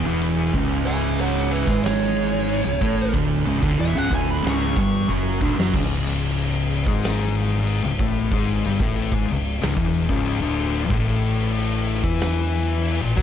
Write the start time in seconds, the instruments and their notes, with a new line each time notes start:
0.05 fingered electric bass E1, distorted electric guitar E2 E3
0.21 ride
0.54 fingered electric bass C#1, distorted electric guitar C#2 C#3, kick, ride
0.86 lead electric guitar E5 G#5, ride
1.19 lead electric guitar C#5 F#5, ride
1.51 lead electric guitar B4 E5, ride
1.67 fingered electric bass G#1, distorted electric guitar G#2 G#3, kick
1.84 lead electric guitar C#5, snare, ride
2.17 ride
2.49 ride
2.65 fingered electric bass C#1, distorted electric guitar C#2
2.81 fingered electric bass A1, distorted electric guitar A2 A3, kick, ride
3.14 fingered electric bass D1, distorted electric guitar D2 D3, kick, ride
3.46 fingered electric bass C#1, distorted electric guitar C#2 C#3, ride
3.62 fingered electric bass D1, distorted electric guitar D2 D3, kick
3.78 fingered electric bass E1, distorted electric guitar E2 E3, lead electric guitar E5, ride
3.94 fingered electric bass C#1, distorted electric guitar C#2 C#3, lead electric guitar F#5
4.11 fingered electric bass D1, distorted electric guitar D2 D3, kick, ride
4.15 lead electric guitar G#5
4.31 lead electric guitar B5
4.44 fingered electric bass C#1, distorted electric guitar C#2 C#3, snare, ride
4.49 lead electric guitar C#6
4.76 fingered electric bass G1, distorted electric guitar G2 G3, lead electric guitar C#6, kick, ride
5.09 fingered electric bass F#1, distorted electric guitar F#2 F#3, kick
5.41 fingered electric bass D1, distorted electric guitar D2 D3, kick
5.57 fingered electric bass F#1, distorted electric guitar F#2 F#3, snare
5.73 fingered electric bass C#1, distorted electric guitar C#2 C#3, kick, crash
6.06 crash
6.38 crash
6.70 crash
6.87 fingered electric bass G#1, distorted electric guitar G#2 G#3, kick
7.03 snare, crash
7.35 crash
7.67 crash
7.84 fingered electric bass C#1, distorted electric guitar C#2
7.99 fingered electric bass A1, distorted electric guitar A2 A3, kick, crash
8.32 fingered electric bass G#1, distorted electric guitar G#2 G#3, kick, crash
8.64 fingered electric bass G1, distorted electric guitar G2 G3, crash
8.80 fingered electric bass A1, distorted electric guitar A2 A3, kick
8.96 crash
9.12 fingered electric bass G#1, distorted electric guitar G#2 G#3, kick
9.28 fingered electric bass C#1, distorted electric guitar C#2, crash
9.61 fingered electric bass C#1, distorted electric guitar C#2 C#3, snare, crash
9.77 fingered electric bass E1, distorted electric guitar E2 E3, kick
9.94 crash
10.09 fingered electric bass C#1, distorted electric guitar C#2 C#3, kick
10.26 crash
10.41 fingered electric bass D1, distorted electric guitar D2 D3
10.58 crash
10.90 fingered electric bass A1, distorted electric guitar A2 A3, kick, crash
11.23 crash
11.55 crash
11.88 crash
12.04 fingered electric bass E2, distorted electric guitar E3 E4, kick
12.19 snare, crash
12.53 crash
12.85 crash
13.01 fingered electric bass A1, distorted electric guitar A#2
13.16 fingered electric bass F#2, distorted electric guitar F#3 F#4, kick, crash